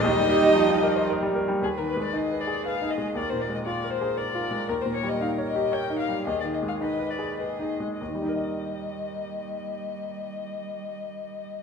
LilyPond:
<<
  \new Staff \with { instrumentName = "Violin" } { \time 3/4 \key ees \major \tempo 4 = 114 ees''2 r4 | r2. | r2. | r2. |
r2. | r2. | r2. | }
  \new Staff \with { instrumentName = "Violin" } { \time 3/4 \key ees \major ees''2 r4 | aes'16 bes'16 ces''16 d''16 ees''8 d''8 f''8 ees''8 | d''16 c''16 d''16 ees''16 d''8 c''8 d''4 | bes'16 c''16 des''16 ees''16 f''8 ees''8 g''8 f''8 |
ees''16 d''16 ees''16 f''16 ees''8 d''8 ees''4 | ees''2.~ | ees''2. | }
  \new Staff \with { instrumentName = "Cello" } { \time 3/4 \key ees \major ees'2 r4 | ces''4 aes'2 | bes'4 bes'2~ | bes'2. |
aes'4 ces''4 aes'8 r8 | g2.~ | g2. | }
  \new Staff \with { instrumentName = "Viola" } { \time 3/4 \key ees \major g'2~ g'8 r8 | r2. | r2. | r2. |
r2. | r2. | r2. | }
  \new Staff \with { instrumentName = "Grand piano" } { \time 3/4 \key ees \major ees,16 g16 g'16 g16 f16 g16 bes'16 c''16 bes'16 g16 bes'16 g16 | \tuplet 3/2 { ees,8 ees8 aes8 ees'8 ces''8 aes'8 ces''8 ees'8 aes8 } | \tuplet 3/2 { ees,8 bes,8 aes8 f'8 bes'8 aes'8 bes'8 f'8 aes8 } | \tuplet 3/2 { ees,8 bes,8 g8 ees'8 des''8 g'8 des''8 ees'8 g8 } |
\tuplet 3/2 { ees,8 ees8 aes8 ees'8 ces''8 aes'8 ces''8 ees'8 aes8 } | <ees, ees g ees' bes' ees''>2.~ | <ees, ees g ees' bes' ees''>2. | }
>>